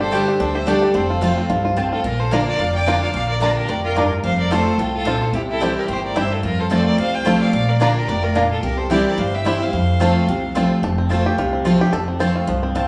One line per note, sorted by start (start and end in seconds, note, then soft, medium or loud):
0.00 0.25 G1 medium
0.00 0.38 G2 medium
0.00 0.25 D4 medium
0.00 0.27 G4 medium
0.00 0.37 A4 medium
0.00 0.38 C5 medium
0.11 0.39 D3 medium
0.11 0.52 G3 medium
0.11 0.39 G3 medium
0.11 0.22 A3 medium
0.11 0.39 D4 medium
0.11 0.22 G4 medium
0.11 0.40 G4 medium
0.11 0.22 D5 medium
0.11 0.22 G5 loud
0.28 0.54 G4 medium
0.39 0.80 D2 medium
0.39 0.65 D3 loud
0.39 0.66 D4 medium
0.39 0.55 A4 medium
0.39 0.56 C5 medium
0.54 0.81 G4 medium
0.54 0.69 C5 medium
0.54 0.69 E5 medium
0.66 0.93 D3 medium
0.66 0.93 G3 loud
0.66 0.77 A3 medium
0.66 0.95 D4 medium
0.66 0.94 D4 loud
0.66 0.77 G4 medium
0.66 0.94 G4 medium
0.66 0.94 A4 medium
0.66 0.77 D5 medium
0.66 0.94 D5 medium
0.66 0.77 G5 medium
0.82 0.95 G4 medium
0.94 1.35 F1 medium
0.94 1.47 F2 loud
0.94 1.34 C4 medium
0.94 1.73 A4 medium
0.94 1.73 C5 medium
1.10 1.21 F4 medium
1.21 1.48 F3 medium
1.21 1.48 A3 medium
1.21 1.32 C4 medium
1.21 1.49 C4 medium
1.21 1.32 F4 medium
1.21 1.49 F4 medium
1.21 1.32 C5 medium
1.21 1.32 A5 medium
1.38 1.75 C4 medium
1.50 1.90 C2 medium
1.50 1.76 G2 medium
1.50 1.63 F4 medium
1.65 1.91 F4 medium
1.76 2.03 A2 medium
1.76 1.87 C4 medium
1.76 2.05 C4 medium
1.76 1.87 F4 medium
1.76 1.87 C5 medium
1.76 1.87 A5 medium
1.92 2.04 F4 medium
1.92 2.05 F4 medium
1.92 2.04 A4 loud
2.04 2.44 A#1 medium
2.04 2.57 A#2 medium
2.04 2.21 F4 medium
2.04 2.21 A#4 loud
2.20 2.34 A4 medium
2.20 2.34 C5 loud
2.31 2.58 D3 medium
2.31 2.41 A#3 loud
2.31 2.58 A#3 medium
2.31 2.39 A#3 medium
2.31 2.58 D4 medium
2.31 2.39 D4 medium
2.31 2.42 F4 medium
2.31 2.59 F4 medium
2.31 2.39 F4 medium
2.31 2.47 A#4 medium
2.31 2.42 D5 medium
2.31 2.47 D5 loud
2.31 2.42 A#5 loud
2.48 2.62 A#4 medium
2.48 2.61 D5 loud
2.59 2.99 F1 medium
2.59 3.11 F2 medium
2.59 2.74 D5 medium
2.59 2.74 F5 loud
2.75 3.00 D5 loud
2.75 3.00 G5 loud
2.86 3.13 D3 medium
2.86 2.96 A#3 medium
2.86 3.13 A#3 medium
2.86 2.94 A#3 medium
2.86 3.13 D4 medium
2.86 2.94 D4 medium
2.86 2.97 F4 medium
2.86 2.94 F4 medium
2.86 3.14 F4 medium
2.86 2.97 D5 medium
2.86 2.97 A#5 medium
3.02 3.14 D5 medium
3.02 3.13 F5 loud
3.14 3.54 A#1 medium
3.14 3.66 A#2 medium
3.14 3.28 D5 medium
3.14 3.28 F5 loud
3.29 3.39 A#4 medium
3.29 3.41 D5 medium
3.40 3.67 D3 medium
3.40 3.51 A#3 medium
3.40 3.67 A#3 medium
3.40 3.49 A#3 medium
3.40 3.68 D4 medium
3.40 3.49 D4 medium
3.40 3.51 F4 loud
3.40 3.68 F4 medium
3.40 3.49 F4 medium
3.40 3.55 A#4 medium
3.40 3.51 D5 loud
3.40 3.56 D5 loud
3.40 3.51 A#5 loud
3.56 3.70 G4 medium
3.56 3.71 A#4 loud
3.69 4.09 F1 medium
3.69 3.95 A2 medium
3.69 3.83 A#4 medium
3.69 3.84 D5 loud
3.84 4.09 F4 medium
3.84 4.10 A#4 loud
3.95 4.23 G2 medium
3.95 4.06 A#3 medium
3.95 4.03 A#3 medium
3.95 4.04 D4 medium
3.95 4.06 F4 medium
3.95 4.04 F4 medium
3.95 4.06 D5 medium
3.95 4.06 A#5 medium
4.23 4.64 F1 medium
4.23 4.76 F2 medium
4.23 4.38 C5 medium
4.23 4.38 F5 loud
4.39 4.53 A#4 medium
4.39 4.53 D5 loud
4.50 4.77 F3 medium
4.50 4.78 A3 medium
4.50 4.61 C4 medium
4.50 4.58 C4 medium
4.50 4.78 C4 medium
4.50 4.61 F4 loud
4.50 4.54 F4 medium
4.50 4.78 F4 loud
4.50 4.82 A4 medium
4.50 4.81 C5 medium
4.50 4.61 C5 medium
4.50 4.61 A5 medium
4.78 5.19 C2 medium
4.78 5.05 A2 medium
4.78 4.94 F4 medium
4.78 4.94 A4 medium
4.95 5.23 F4 medium
4.95 5.23 A4 medium
5.05 5.32 A#2 loud
5.05 5.15 C4 medium
5.05 5.13 C4 medium
5.05 5.16 F4 medium
5.05 5.09 F4 medium
5.05 5.16 C5 medium
5.05 5.16 A5 medium
5.21 5.33 A4 medium
5.21 5.34 C5 medium
5.33 5.73 C2 medium
5.33 5.86 C3 medium
5.33 5.41 E4 medium
5.33 5.41 G4 medium
5.49 5.74 E4 medium
5.49 5.75 A4 medium
5.60 5.87 E3 medium
5.60 5.87 G3 medium
5.60 5.71 C4 medium
5.60 5.87 C4 medium
5.60 5.68 C4 medium
5.60 5.71 E4 medium
5.60 5.68 E4 medium
5.60 5.88 E4 medium
5.60 5.68 G4 medium
5.60 5.71 C5 medium
5.60 5.71 G5 loud
5.77 5.88 G4 medium
5.77 5.88 A#4 medium
5.88 6.29 G1 medium
5.88 6.15 A2 medium
5.88 6.03 G4 medium
5.88 6.03 C5 loud
6.03 6.18 A#4 medium
6.03 6.19 D5 medium
6.15 6.42 G2 loud
6.15 6.25 C4 medium
6.15 6.23 C4 medium
6.15 6.26 E4 medium
6.15 6.23 E4 medium
6.15 6.23 G4 medium
6.15 6.26 C5 medium
6.15 6.33 C5 medium
6.15 6.35 E5 medium
6.15 6.26 G5 loud
6.31 6.43 F4 medium
6.31 6.44 A4 medium
6.43 6.96 F2 medium
6.43 6.84 F2 medium
6.43 6.61 F4 medium
6.43 6.62 A#4 medium
6.59 6.71 A4 medium
6.59 6.72 C5 medium
6.70 6.96 F3 medium
6.70 6.97 A3 medium
6.70 6.81 C4 medium
6.70 6.78 C4 medium
6.70 6.97 C4 medium
6.70 6.81 F4 medium
6.70 6.74 F4 medium
6.70 6.98 F4 medium
6.70 6.86 A4 medium
6.70 6.81 C5 medium
6.70 6.86 D5 loud
6.70 6.81 A5 loud
6.87 6.98 A#4 medium
6.87 6.98 D5 loud
6.98 7.39 C2 medium
6.98 7.51 C3 medium
6.98 7.13 C5 medium
6.98 7.16 F5 loud
7.13 7.40 C5 medium
7.13 7.40 G5 loud
7.25 7.51 F3 medium
7.25 7.52 A3 medium
7.25 7.35 C4 medium
7.25 7.33 C4 medium
7.25 7.52 C4 loud
7.25 7.35 F4 medium
7.25 7.29 F4 medium
7.25 7.53 F4 loud
7.25 7.36 C5 medium
7.25 7.36 A5 medium
7.41 7.52 D5 medium
7.41 7.52 F5 loud
7.53 7.93 A#1 medium
7.53 8.06 A#2 loud
7.53 7.70 D5 medium
7.53 7.70 F5 loud
7.68 7.80 A#4 medium
7.68 7.80 D5 medium
7.80 8.07 D3 medium
7.80 7.90 A#3 medium
7.80 8.07 A#3 medium
7.80 7.88 A#3 medium
7.80 8.07 D4 medium
7.80 7.88 D4 medium
7.80 7.90 F4 medium
7.80 7.88 F4 medium
7.80 8.08 F4 medium
7.80 7.94 A#4 medium
7.80 7.91 D5 loud
7.80 7.95 D5 loud
7.80 7.91 A#5 loud
7.95 8.09 G4 medium
7.95 8.10 A#4 loud
8.08 8.49 F1 medium
8.08 8.35 A2 medium
8.08 8.24 A#4 medium
8.08 8.25 D5 loud
8.23 8.50 F4 medium
8.23 8.50 A#4 medium
8.34 8.62 A#2 medium
8.34 8.45 A#3 medium
8.34 8.43 A#3 medium
8.34 8.43 D4 medium
8.34 8.45 F4 medium
8.34 8.43 F4 medium
8.34 8.46 D5 medium
8.34 8.46 A#5 medium
8.51 8.62 F4 medium
8.51 8.62 A4 medium
8.62 9.03 C2 medium
8.62 9.16 C3 medium
8.62 8.80 G4 medium
8.62 8.79 A#4 medium
8.78 8.91 A4 medium
8.78 8.90 C5 medium
8.90 9.17 E3 medium
8.90 9.17 G3 loud
8.90 9.00 C4 medium
8.90 8.98 C4 medium
8.90 9.17 C4 medium
8.90 9.00 E4 medium
8.90 8.98 E4 medium
8.90 9.18 E4 loud
8.90 8.98 G4 medium
8.90 9.06 G4 medium
8.90 9.01 C5 medium
8.90 9.05 D5 loud
8.90 9.01 G5 medium
9.06 9.21 A#4 medium
9.06 9.21 D5 medium
9.17 9.58 G1 medium
9.17 9.71 G2 medium
9.17 9.36 C5 medium
9.17 9.36 F5 medium
9.35 9.48 E5 medium
9.35 9.48 G5 medium
9.44 9.60 E3 medium
9.44 9.60 G3 medium
9.44 9.55 C4 medium
9.44 9.53 C4 medium
9.44 9.60 C4 loud
9.44 9.55 E4 medium
9.44 9.53 E4 medium
9.44 9.59 E4 loud
9.44 9.53 G4 medium
9.44 9.56 C5 medium
9.44 9.62 C5 medium
9.44 9.64 E5 medium
9.44 9.56 G5 medium
9.60 9.73 C4 soft
9.60 9.72 E4 medium
9.60 10.56 C5 medium
9.60 10.57 F5 medium
9.73 10.13 F2 medium
9.73 10.26 F2 medium
9.99 10.27 F3 medium
9.99 10.27 A3 loud
9.99 10.10 C4 medium
9.99 10.08 C4 medium
9.99 10.27 C4 loud
9.99 10.10 F4 medium
9.99 10.04 F4 medium
9.99 10.28 F4 loud
9.99 10.11 C5 loud
9.99 10.11 A5 loud
10.28 10.69 C2 medium
10.28 10.81 C3 medium
10.55 10.82 F3 loud
10.55 10.82 A3 medium
10.55 10.65 C4 medium
10.55 10.63 C4 medium
10.55 10.83 C4 medium
10.55 10.65 F4 medium
10.55 10.59 F4 medium
10.55 10.83 F4 medium
10.55 10.66 C5 medium
10.55 10.66 A5 medium
10.82 11.23 F1 medium
10.82 11.36 F2 medium
10.82 11.26 A4 medium
10.98 11.36 C4 medium
11.09 11.37 F3 medium
11.09 11.37 A3 medium
11.09 11.20 C4 medium
11.09 11.38 C4 medium
11.09 11.20 F4 medium
11.09 11.39 F4 medium
11.09 11.38 F4 medium
11.09 11.20 C5 medium
11.09 11.21 A5 loud
11.26 11.38 G4 medium
11.38 11.78 C2 medium
11.38 11.91 C3 medium
11.38 11.64 F4 medium
11.53 11.91 C4 medium
11.64 11.92 F3 medium
11.64 11.92 A3 loud
11.64 11.75 C4 medium
11.64 11.93 C4 medium
11.64 11.75 F4 medium
11.64 11.81 F4 medium
11.64 11.93 F4 loud
11.64 11.75 C5 medium
11.64 11.76 A5 medium
11.81 11.92 G4 medium
11.93 12.33 F1 medium
11.93 12.46 F2 medium
11.93 12.20 A4 medium
12.08 12.46 C4 medium
12.19 12.47 F3 medium
12.19 12.47 A3 medium
12.19 12.30 C4 medium
12.19 12.48 C4 medium
12.19 12.30 F4 medium
12.19 12.48 F4 medium
12.19 12.35 C5 loud
12.19 12.31 C5 medium
12.19 12.31 A5 loud
12.36 12.75 F4 medium
12.47 12.88 C2 medium
12.47 12.74 G2 medium
12.47 12.88 F3 medium
12.63 12.88 C4 medium
12.75 12.88 A2 medium
12.75 12.85 C4 medium
12.75 12.86 F4 medium
12.75 12.88 F4 medium
12.75 12.86 C5 medium
12.75 12.86 A5 medium